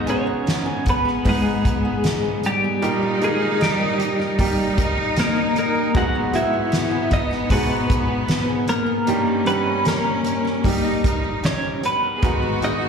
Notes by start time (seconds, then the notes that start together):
Already playing: G#2 D#3 G#3 B3 D#4 F#4
0.06 G#3 B3 C#4 D#4 G#4 C#5, hi-hat pedal, open hi-hat
0.26 B3
0.46 D#4, snare, hi-hat pedal, open hi-hat
0.66 G#4
0.85 D#4, kick, hi-hat pedal, open hi-hat
0.89 B3 B4
1.05 G#4, snare
1.25 G#2 B3 D#4 G#4 B4, kick, hi-hat pedal, open hi-hat
1.29 G#3 G#4
1.45 B3
1.65 G#4, kick, hi-hat pedal, open hi-hat
1.85 B3
2.04 D#4, snare, hi-hat pedal, open hi-hat
2.25 G#4
2.44 G3 D#4 G4, hi-hat pedal, open hi-hat
2.64 G#4
2.82 A#2 G3 A#3 D#4 G4 A#4, hi-hat pedal, open hi-hat
3.03 D#4
3.21 D#3 A#3 D#4 G#4 A#4, hi-hat pedal, open hi-hat
3.26 G#3
3.42 D#4
3.61 G3 G4, snare, hi-hat pedal, open hi-hat
3.81 A#4
4.00 G4, hi-hat pedal, open hi-hat
4.19 A#4, snare
4.38 G3 A#3 D#4 G4 A#4, kick, hi-hat pedal, open hi-hat
4.58 D#4
4.78 A#4, kick, hi-hat pedal, open hi-hat
4.97 D#4
5.17 A#3 G4, snare, hi-hat pedal, open hi-hat
5.21 A#4
5.36 A#4
5.56 A#3 G4 A#4, hi-hat pedal, open hi-hat
5.75 A#4
5.95 G#2 F#3 G#3 B3 D#4 F#4 G#4 F#5, kick, hi-hat pedal, open hi-hat
6.15 B3
6.33 G#3 B3 E4 F#4 G#4 E5, hi-hat pedal, open hi-hat
6.53 B3
6.72 snare, hi-hat pedal, open hi-hat
6.91 G#4
7.11 D#4 D#5, kick, hi-hat pedal, open hi-hat
7.31 G#4, snare
7.50 G#2 B2 G#3 B3 D#4 F#4 G#4 B4, kick, hi-hat pedal, open hi-hat
7.70 B3
7.90 G#4, kick, hi-hat pedal, open hi-hat
8.28 D#4, snare, hi-hat pedal, open hi-hat
8.49 G#4
8.67 A#3 D#4 A#4, hi-hat pedal, open hi-hat
8.86 G#4
9.07 G2 G3 A#3 C#4 D#4 G4 A#4, hi-hat pedal, open hi-hat
9.27 D#4
9.45 G3 B3 D#4 G4 B4, hi-hat pedal, open hi-hat
9.66 D#4
9.85 A#3 G4 A#4, snare, hi-hat pedal, open hi-hat
10.05 A#4
10.25 G4, hi-hat pedal, open hi-hat
10.45 A#4, snare
10.64 G3 D#4 G4 A#4, kick, hi-hat pedal, open hi-hat
10.84 D#4
11.03 D#4 A#4, kick, hi-hat pedal, open hi-hat
11.24 D#4
11.43 C#4 G4 C#5, snare, hi-hat pedal, open hi-hat
11.63 A#4
11.83 B3 G4 B4, hi-hat pedal, open hi-hat
12.03 A#4
12.15 G#4
12.22 G#2 D#3 G#3 B3 D#4 F#4 G#4, kick, hi-hat pedal, open hi-hat
12.42 B3
12.62 G#3 B3 D#4 F#4 G#4 D#5, hi-hat pedal, open hi-hat
12.81 B3